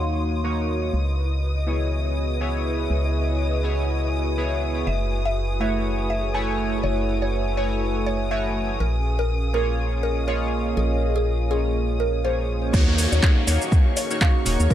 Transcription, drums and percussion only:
12.74 kick loud
12.74 crash loud
12.74 shaker soft
12.98 open hi-hat loud
12.98 shaker medium
13.12 shaker soft
13.23 kick loud
13.23 clap loud
13.23 shaker soft
13.48 open hi-hat loud
13.48 shaker medium
13.62 shaker soft
13.72 kick loud
13.72 shaker soft
13.97 open hi-hat loud
13.97 shaker medium
14.11 shaker soft
14.21 kick loud
14.21 clap loud
14.21 shaker soft
14.46 open hi-hat loud
14.46 shaker medium
14.60 shaker soft
14.70 kick loud
14.70 shaker soft

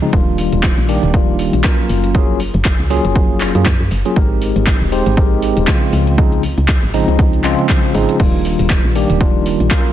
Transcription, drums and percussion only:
0.13 kick loud
0.13 closed hi-hat medium
0.38 open hi-hat loud
0.52 closed hi-hat soft
0.63 kick loud
0.63 clap loud
0.63 closed hi-hat medium
0.78 closed hi-hat soft
0.89 open hi-hat medium
1.03 closed hi-hat soft
1.14 kick loud
1.14 closed hi-hat medium
1.39 open hi-hat loud
1.53 closed hi-hat soft
1.64 kick loud
1.64 clap loud
1.64 closed hi-hat medium
1.89 open hi-hat medium
2.04 closed hi-hat medium
2.15 kick loud
2.15 closed hi-hat medium
2.40 open hi-hat loud
2.54 closed hi-hat soft
2.65 kick loud
2.65 clap loud
2.65 closed hi-hat medium
2.79 closed hi-hat soft
2.90 open hi-hat medium
3.05 closed hi-hat medium
3.16 kick loud
3.16 closed hi-hat medium
3.41 clap medium
3.41 open hi-hat loud
3.55 closed hi-hat medium
3.66 kick loud
3.66 clap loud
3.66 closed hi-hat medium
3.91 open hi-hat medium
4.05 closed hi-hat medium
4.16 kick loud
4.16 closed hi-hat medium
4.42 open hi-hat loud
4.56 closed hi-hat medium
4.67 kick medium
4.67 clap loud
4.67 closed hi-hat medium
4.81 closed hi-hat soft
4.92 open hi-hat medium
5.06 closed hi-hat medium
5.17 kick loud
5.17 closed hi-hat medium
5.42 open hi-hat loud
5.57 closed hi-hat medium
5.67 kick loud
5.67 clap loud
5.67 closed hi-hat medium
5.93 open hi-hat medium
6.07 closed hi-hat medium
6.18 kick loud
6.18 closed hi-hat medium
6.32 closed hi-hat soft
6.43 open hi-hat loud
6.58 closed hi-hat medium
6.68 kick loud
6.68 clap loud
6.68 closed hi-hat medium
6.83 closed hi-hat soft
6.94 open hi-hat medium
7.08 closed hi-hat medium
7.19 kick loud
7.19 closed hi-hat medium
7.33 closed hi-hat soft
7.44 clap medium
7.44 open hi-hat loud
7.58 closed hi-hat medium
7.69 kick loud
7.69 clap loud
7.69 closed hi-hat medium
7.84 closed hi-hat soft
7.95 open hi-hat medium
8.09 closed hi-hat medium
8.20 kick loud
8.20 closed hi-hat medium
8.20 crash medium
8.45 open hi-hat loud
8.59 closed hi-hat medium
8.70 kick loud
8.70 clap loud
8.70 closed hi-hat medium
8.85 closed hi-hat soft
8.95 open hi-hat medium
9.10 closed hi-hat medium
9.21 kick loud
9.21 closed hi-hat medium
9.46 open hi-hat loud
9.60 closed hi-hat medium
9.71 kick loud
9.71 clap loud
9.71 closed hi-hat medium

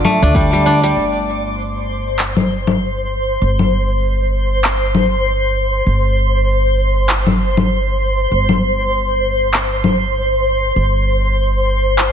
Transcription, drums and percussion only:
0.05 low conga medium
0.23 shaker medium
0.35 kick medium
0.35 shaker medium
0.54 shaker soft
0.84 shaker medium
2.19 clap medium
2.37 low conga medium
2.67 low conga medium
3.59 low conga medium
4.64 clap medium
4.95 low conga medium
7.09 clap medium
7.27 low conga medium
7.57 low conga medium
8.49 low conga medium
9.54 clap medium
9.84 low conga medium
11.98 clap medium

